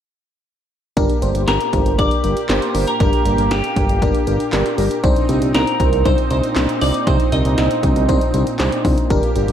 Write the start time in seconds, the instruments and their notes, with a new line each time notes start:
0.97 analog synth bass G1, analog synth pad A#2 A#3 G4, fm electric piano D4 G4 A#4, kick, closed hi-hat
1.09 closed hi-hat
1.22 analog synth bass G1, fm electric piano D4 G4 C5, closed hi-hat
1.35 analog synth bass G1, closed hi-hat
1.47 analog synth bass G1, fm electric piano D4 G4 A#4, clean electric guitar A#4, snare, closed hi-hat
1.61 closed hi-hat
1.73 analog synth bass G1, fm electric piano D4 G4 C5, kick, closed hi-hat
1.86 analog synth bass G1, closed hi-hat
1.98 analog synth bass G1, fm electric piano D4 G4 A#4, clean electric guitar D5, kick, closed hi-hat
2.11 closed hi-hat
2.24 analog synth bass G1, fm electric piano D4 G4 A#4, closed hi-hat
2.37 closed hi-hat
2.49 analog synth bass G1, fm electric piano D4 G4 A#4, clean electric guitar C5, snare, clap, closed hi-hat
2.62 closed hi-hat
2.75 analog synth bass G1, fm electric piano D4 G4 A#4, open hi-hat
2.87 clean electric guitar A#4, closed hi-hat
3.00 analog synth bass G1, fm electric piano D4 G4 A#4, clean electric guitar A#4, kick, closed hi-hat
3.13 closed hi-hat
3.26 analog synth bass G1, fm electric piano D4 G4 A#4, closed hi-hat
3.38 analog synth bass G1, closed hi-hat
3.51 analog synth bass G1, fm electric piano D4 G4 A#4, clean electric guitar G4, snare, closed hi-hat
3.64 closed hi-hat
3.76 analog synth bass G1, fm electric piano D4 G4 A#4, kick, closed hi-hat
3.89 analog synth bass G1, closed hi-hat
4.02 analog synth bass G1, fm electric piano D4 G4 A#4, kick, closed hi-hat
4.15 closed hi-hat
4.27 analog synth bass G1, fm electric piano D4 G4 A#4, closed hi-hat
4.40 closed hi-hat
4.53 analog synth bass G1, fm electric piano D4 G4 A#4 D5, snare, clap, closed hi-hat
4.66 closed hi-hat
4.78 analog synth bass G1, fm electric piano D4 G4 A#4 A#5, open hi-hat
4.91 closed hi-hat
5.03 analog synth bass C2, analog synth pad C4 D#4, fm electric piano D4 D#4 C5, kick, closed hi-hat
5.16 closed hi-hat
5.29 analog synth bass C2, fm electric piano D4 D#4 C5, closed hi-hat
5.42 analog synth bass C2, closed hi-hat
5.54 analog synth bass C2, fm electric piano D4 D#4 C5, clean electric guitar A#4, snare, closed hi-hat
5.67 closed hi-hat
5.80 analog synth bass C2, fm electric piano D4 D#4 C5, kick, closed hi-hat
5.93 analog synth bass C2, closed hi-hat
6.05 analog synth bass C2, fm electric piano D4 D#4 C5, clean electric guitar C5, kick, closed hi-hat
6.18 closed hi-hat
6.31 analog synth bass C2, fm electric piano D4 D#4 C5, clean electric guitar C5, closed hi-hat
6.43 closed hi-hat
6.56 analog synth bass C2, fm electric piano D4 D#4 C5, snare, clap, closed hi-hat
6.69 closed hi-hat
6.81 analog synth bass C2, fm electric piano D4 D#4 C5, clean electric guitar D5, open hi-hat
6.94 closed hi-hat
7.07 analog synth bass C2, fm electric piano D4 D#4 C5, clean electric guitar C5, kick, closed hi-hat
7.20 closed hi-hat
7.32 analog synth bass C2, fm electric piano D4 D#4 A#4, clean electric guitar D#5, closed hi-hat
7.45 analog synth bass C2, closed hi-hat
7.58 analog synth bass C2, fm electric piano D4 D#4 C5, snare, closed hi-hat
7.71 closed hi-hat
7.83 analog synth bass C2, fm electric piano D4 D#4 C5, kick, closed hi-hat
7.96 analog synth bass C2, closed hi-hat
8.08 analog synth bass C2, fm electric piano D4 D#4 C5, kick, closed hi-hat
8.21 closed hi-hat
8.34 analog synth bass C2, fm electric piano D4 D#4 C5, closed hi-hat
8.47 closed hi-hat
8.59 analog synth bass C2, fm electric piano D4 D#4 C5, snare, clap, closed hi-hat
8.72 closed hi-hat
8.85 analog synth bass C2, fm electric piano D4 D#4 C5, kick, open hi-hat
8.98 closed hi-hat
9.10 analog synth bass G1, analog synth pad A#3 G4, fm electric piano D4 G4 A#4, kick, closed hi-hat
9.23 closed hi-hat
9.36 analog synth bass G1, fm electric piano D4 G4 A#4, closed hi-hat
9.48 analog synth bass G1, closed hi-hat